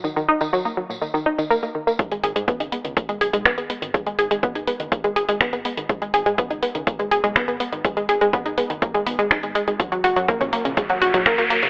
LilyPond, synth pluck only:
\new Staff \with { instrumentName = "Synth pluck" } { \time 4/4 \key gis \minor \tempo 4 = 123 dis16 dis16 dis'16 dis16 fis16 ais16 fis16 ais,16 dis16 dis16 dis'16 dis16 ais16 ais16 dis16 ais16 | gis16 gis16 gis'16 gis16 b16 dis'16 b16 dis16 ais16 gis16 gis'16 gis16 b16 b16 b16 dis16 | gis16 gis16 gis'16 gis16 b16 dis'16 b16 dis16 ais16 gis16 gis'16 gis16 b16 b16 b16 dis16 | gis16 gis16 gis'16 gis16 b16 dis'16 b16 dis16 ais16 gis16 gis'16 gis16 b16 b16 b16 dis16 |
gis16 gis16 gis'16 gis16 b16 dis'16 b16 dis16 ais16 gis16 b16 gis16 dis'16 gis16 gis16 gis16 | fis16 fis16 fis'16 fis16 ais16 cis'16 ais16 cis16 gis16 fis16 fis'16 fis16 ais16 ais16 ais16 cis16 | }